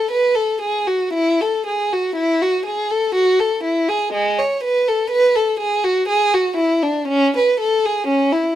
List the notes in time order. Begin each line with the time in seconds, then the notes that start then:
Already playing: A4
0.12 B4
0.35 A4
0.61 G#4
0.87 F#4
1.13 E4
1.41 A4
1.66 G#4
1.93 F#4
2.16 E4
2.42 F#4
2.66 G#4
2.90 A4
3.15 F#4
3.40 A4
3.64 E4
3.88 G#4
4.13 G#3
4.38 C#5
4.64 B4
4.88 A4
5.10 B4
5.35 A4
5.60 G#4
5.84 F#4
6.08 G#4
6.34 F#4
6.57 E4
6.83 D4
7.08 C#4
7.37 B4
7.60 A4
7.85 G#4
8.08 C#4
8.32 E4